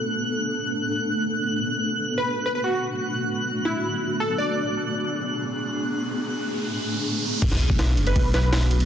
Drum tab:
CC |----------------|----------------|----------------|----------------|
RD |----------------|----------------|----------------|----------------|
SD |----------------|----------------|----------------|----------------|
BD |----------------|----------------|----------------|----------------|

CC |----------------|x---------------|
RD |----------------|x-x-x-xxx-x-x-xx|
SD |----------------|-o--o-----o-o---|
BD |----------------|o--o----o-------|